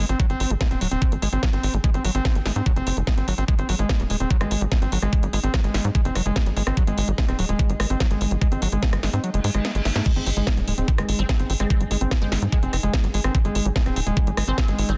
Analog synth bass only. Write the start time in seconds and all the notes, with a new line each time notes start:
0.09 G#1
0.30 G#1
0.40 G#1
0.50 G#1
0.71 D#1
0.81 D#1
0.92 D#1
1.12 G#1
1.22 G#1
1.33 G#1
1.53 G#1
1.63 G#1
1.74 G#1
1.94 G#1
2.04 G#1
2.15 G#1
2.35 G#1
2.46 G#1
2.56 G#2
2.76 F#1
2.87 F#1
2.97 F#1
3.17 G#1
3.28 G#1
3.38 G#1
3.59 G#1
3.69 G#1
3.79 G#1
4.00 D#1
4.10 D#1
4.20 D#1
4.41 G#1
4.51 G#1
4.61 G#1
4.82 G#1
4.92 G#1
5.02 G#1
5.23 G#1
5.33 G#1
5.44 G#1
5.64 G#1
5.74 G#1
5.85 G#2
6.05 F#1
6.15 F#1
6.26 F#1
6.46 G#1
6.57 G#1
6.67 G#1
6.87 G#1
6.98 G#1
7.08 G#1
7.28 D#1
7.39 D#1
7.49 D#1
7.70 G#1
7.80 G#1
7.90 G#1
8.11 G#1
8.21 G#1
8.31 G#1
8.52 G#1
8.62 G#1
8.72 G#1
8.93 G#1
9.03 G#1
9.13 G#2
9.34 F#1
9.44 G#2
9.55 G#1
9.75 G#1
9.85 G#1
9.96 G#2
10.16 G#1
10.26 G#1
10.37 G#1
10.57 D#1
10.68 D#1
10.78 D#1
10.98 G#1
11.09 G#1
11.19 G#1
11.39 G#1
11.50 G#1
11.60 G#1
11.80 G#1
11.91 G#1
12.01 G#1
12.22 G#1
12.32 G#1
12.42 G#2
12.63 F#1
12.73 F#1
12.83 F#1
13.04 G#1
13.14 G#1
13.24 G#1
13.45 G#1
13.55 G#1
13.65 G#1
13.86 D#1
13.96 D#1
14.07 D#1
14.27 G#1
14.37 G#1
14.48 G#1
14.68 G#1
14.78 G#1
14.89 G#1